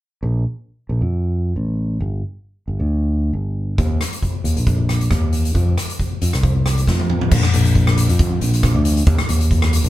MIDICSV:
0, 0, Header, 1, 3, 480
1, 0, Start_track
1, 0, Key_signature, -2, "major"
1, 0, Tempo, 441826
1, 254, Time_signature, 4, 2, 24, 8
1, 10745, End_track
2, 0, Start_track
2, 0, Title_t, "Fingered electric bass"
2, 0, Program_c, 0, 33
2, 245, Note_on_c, 0, 34, 82
2, 470, Note_off_c, 0, 34, 0
2, 970, Note_on_c, 0, 34, 71
2, 1091, Note_off_c, 0, 34, 0
2, 1100, Note_on_c, 0, 41, 74
2, 1655, Note_off_c, 0, 41, 0
2, 1695, Note_on_c, 0, 33, 67
2, 2138, Note_off_c, 0, 33, 0
2, 2177, Note_on_c, 0, 31, 84
2, 2400, Note_off_c, 0, 31, 0
2, 2907, Note_on_c, 0, 31, 62
2, 3023, Note_off_c, 0, 31, 0
2, 3039, Note_on_c, 0, 38, 79
2, 3587, Note_off_c, 0, 38, 0
2, 3621, Note_on_c, 0, 31, 70
2, 4063, Note_off_c, 0, 31, 0
2, 4110, Note_on_c, 0, 39, 86
2, 4329, Note_off_c, 0, 39, 0
2, 4826, Note_on_c, 0, 39, 77
2, 4945, Note_off_c, 0, 39, 0
2, 4960, Note_on_c, 0, 34, 79
2, 5509, Note_off_c, 0, 34, 0
2, 5545, Note_on_c, 0, 39, 79
2, 5987, Note_off_c, 0, 39, 0
2, 6024, Note_on_c, 0, 41, 96
2, 6247, Note_off_c, 0, 41, 0
2, 6755, Note_on_c, 0, 41, 66
2, 6870, Note_off_c, 0, 41, 0
2, 6888, Note_on_c, 0, 36, 81
2, 7431, Note_off_c, 0, 36, 0
2, 7469, Note_on_c, 0, 41, 72
2, 7907, Note_off_c, 0, 41, 0
2, 7947, Note_on_c, 0, 34, 110
2, 8064, Note_off_c, 0, 34, 0
2, 8194, Note_on_c, 0, 34, 88
2, 8752, Note_off_c, 0, 34, 0
2, 8791, Note_on_c, 0, 41, 93
2, 9112, Note_off_c, 0, 41, 0
2, 9134, Note_on_c, 0, 34, 82
2, 9472, Note_off_c, 0, 34, 0
2, 9504, Note_on_c, 0, 38, 85
2, 9826, Note_off_c, 0, 38, 0
2, 9851, Note_on_c, 0, 39, 102
2, 9971, Note_off_c, 0, 39, 0
2, 10095, Note_on_c, 0, 39, 85
2, 10656, Note_off_c, 0, 39, 0
2, 10694, Note_on_c, 0, 34, 100
2, 10745, Note_off_c, 0, 34, 0
2, 10745, End_track
3, 0, Start_track
3, 0, Title_t, "Drums"
3, 4110, Note_on_c, 9, 36, 84
3, 4113, Note_on_c, 9, 42, 47
3, 4219, Note_off_c, 9, 36, 0
3, 4221, Note_off_c, 9, 42, 0
3, 4354, Note_on_c, 9, 37, 69
3, 4354, Note_on_c, 9, 42, 68
3, 4462, Note_off_c, 9, 37, 0
3, 4462, Note_off_c, 9, 42, 0
3, 4482, Note_on_c, 9, 42, 51
3, 4590, Note_on_c, 9, 36, 64
3, 4591, Note_off_c, 9, 42, 0
3, 4595, Note_on_c, 9, 42, 47
3, 4699, Note_off_c, 9, 36, 0
3, 4703, Note_off_c, 9, 42, 0
3, 4832, Note_on_c, 9, 42, 68
3, 4941, Note_off_c, 9, 42, 0
3, 4962, Note_on_c, 9, 42, 55
3, 5071, Note_off_c, 9, 42, 0
3, 5072, Note_on_c, 9, 36, 90
3, 5073, Note_on_c, 9, 42, 57
3, 5180, Note_off_c, 9, 36, 0
3, 5181, Note_off_c, 9, 42, 0
3, 5314, Note_on_c, 9, 37, 64
3, 5314, Note_on_c, 9, 42, 65
3, 5423, Note_off_c, 9, 37, 0
3, 5423, Note_off_c, 9, 42, 0
3, 5440, Note_on_c, 9, 42, 52
3, 5547, Note_off_c, 9, 42, 0
3, 5547, Note_on_c, 9, 37, 70
3, 5547, Note_on_c, 9, 42, 53
3, 5549, Note_on_c, 9, 36, 71
3, 5656, Note_off_c, 9, 37, 0
3, 5656, Note_off_c, 9, 42, 0
3, 5658, Note_off_c, 9, 36, 0
3, 5786, Note_on_c, 9, 42, 71
3, 5895, Note_off_c, 9, 42, 0
3, 5922, Note_on_c, 9, 42, 55
3, 6029, Note_off_c, 9, 42, 0
3, 6029, Note_on_c, 9, 36, 88
3, 6029, Note_on_c, 9, 42, 55
3, 6138, Note_off_c, 9, 36, 0
3, 6138, Note_off_c, 9, 42, 0
3, 6275, Note_on_c, 9, 37, 72
3, 6275, Note_on_c, 9, 42, 78
3, 6383, Note_off_c, 9, 37, 0
3, 6383, Note_off_c, 9, 42, 0
3, 6405, Note_on_c, 9, 42, 56
3, 6513, Note_off_c, 9, 42, 0
3, 6513, Note_on_c, 9, 36, 61
3, 6520, Note_on_c, 9, 42, 54
3, 6622, Note_off_c, 9, 36, 0
3, 6629, Note_off_c, 9, 42, 0
3, 6753, Note_on_c, 9, 42, 78
3, 6861, Note_off_c, 9, 42, 0
3, 6881, Note_on_c, 9, 37, 66
3, 6881, Note_on_c, 9, 42, 48
3, 6989, Note_off_c, 9, 37, 0
3, 6989, Note_off_c, 9, 42, 0
3, 6990, Note_on_c, 9, 36, 92
3, 6992, Note_on_c, 9, 42, 49
3, 7099, Note_off_c, 9, 36, 0
3, 7101, Note_off_c, 9, 42, 0
3, 7232, Note_on_c, 9, 37, 76
3, 7232, Note_on_c, 9, 42, 72
3, 7341, Note_off_c, 9, 37, 0
3, 7341, Note_off_c, 9, 42, 0
3, 7359, Note_on_c, 9, 42, 51
3, 7468, Note_off_c, 9, 42, 0
3, 7469, Note_on_c, 9, 36, 69
3, 7470, Note_on_c, 9, 38, 50
3, 7578, Note_off_c, 9, 36, 0
3, 7578, Note_off_c, 9, 38, 0
3, 7596, Note_on_c, 9, 48, 44
3, 7705, Note_off_c, 9, 48, 0
3, 7709, Note_on_c, 9, 45, 66
3, 7818, Note_off_c, 9, 45, 0
3, 7837, Note_on_c, 9, 43, 65
3, 7946, Note_off_c, 9, 43, 0
3, 7946, Note_on_c, 9, 49, 104
3, 7947, Note_on_c, 9, 36, 107
3, 8055, Note_off_c, 9, 49, 0
3, 8056, Note_off_c, 9, 36, 0
3, 8073, Note_on_c, 9, 37, 85
3, 8181, Note_off_c, 9, 37, 0
3, 8185, Note_on_c, 9, 42, 85
3, 8293, Note_off_c, 9, 42, 0
3, 8310, Note_on_c, 9, 42, 68
3, 8418, Note_off_c, 9, 42, 0
3, 8424, Note_on_c, 9, 36, 77
3, 8426, Note_on_c, 9, 42, 56
3, 8533, Note_off_c, 9, 36, 0
3, 8534, Note_off_c, 9, 42, 0
3, 8553, Note_on_c, 9, 37, 94
3, 8661, Note_off_c, 9, 37, 0
3, 8663, Note_on_c, 9, 42, 87
3, 8772, Note_off_c, 9, 42, 0
3, 8790, Note_on_c, 9, 42, 68
3, 8899, Note_off_c, 9, 42, 0
3, 8900, Note_on_c, 9, 42, 65
3, 8901, Note_on_c, 9, 36, 109
3, 9008, Note_off_c, 9, 42, 0
3, 9010, Note_off_c, 9, 36, 0
3, 9140, Note_on_c, 9, 42, 77
3, 9248, Note_off_c, 9, 42, 0
3, 9273, Note_on_c, 9, 42, 70
3, 9379, Note_off_c, 9, 42, 0
3, 9379, Note_on_c, 9, 36, 86
3, 9379, Note_on_c, 9, 37, 88
3, 9379, Note_on_c, 9, 42, 62
3, 9487, Note_off_c, 9, 37, 0
3, 9487, Note_off_c, 9, 42, 0
3, 9488, Note_off_c, 9, 36, 0
3, 9613, Note_on_c, 9, 42, 81
3, 9722, Note_off_c, 9, 42, 0
3, 9744, Note_on_c, 9, 42, 59
3, 9848, Note_off_c, 9, 42, 0
3, 9848, Note_on_c, 9, 42, 59
3, 9853, Note_on_c, 9, 36, 120
3, 9956, Note_off_c, 9, 42, 0
3, 9961, Note_off_c, 9, 36, 0
3, 9979, Note_on_c, 9, 37, 92
3, 10088, Note_off_c, 9, 37, 0
3, 10090, Note_on_c, 9, 42, 90
3, 10198, Note_off_c, 9, 42, 0
3, 10219, Note_on_c, 9, 42, 61
3, 10328, Note_off_c, 9, 42, 0
3, 10330, Note_on_c, 9, 36, 82
3, 10332, Note_on_c, 9, 42, 65
3, 10438, Note_off_c, 9, 36, 0
3, 10440, Note_off_c, 9, 42, 0
3, 10454, Note_on_c, 9, 37, 88
3, 10562, Note_off_c, 9, 37, 0
3, 10568, Note_on_c, 9, 42, 87
3, 10677, Note_off_c, 9, 42, 0
3, 10690, Note_on_c, 9, 42, 59
3, 10745, Note_off_c, 9, 42, 0
3, 10745, End_track
0, 0, End_of_file